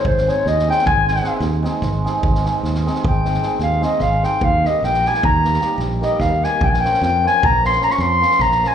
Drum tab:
SD |-oo-oooo--ooo-o-o-o-o-|-oo-oooo--ooo-o-o-o-o-|--o-oooo--ooo-o-o-o-o-|-oooo-o---ooooo-oooooo|
BD |o-------o---------o---|o-------o---------o---|o-------o---------o---|o-------o---------o---|